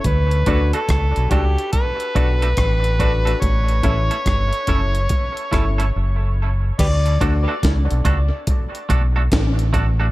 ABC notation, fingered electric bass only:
X:1
M:4/4
L:1/16
Q:"Swing 16ths" 1/4=71
K:D
V:1 name="Fingered electric bass" clef=bass
D,,2 D,, z C,, B,,, C,, z3 B,,,2 A,,,4 | A,,,2 A,,, z G,,, z F,,,2 z2 G,,,2 F,,,4 | D,,2 D,, z C,, B,,, C,, z3 B,,,2 A,,,4 |]